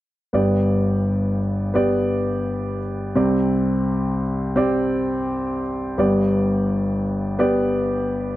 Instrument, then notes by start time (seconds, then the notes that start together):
grand piano
0.33 G1 G2 B3 G4 D5
1.74 B3 G4 D5
3.15 C2 C3 C4 G4 D5
4.56 C4 G4 D5
5.98 G1 G2 B3 G4 D5
7.39 B3 G4 D5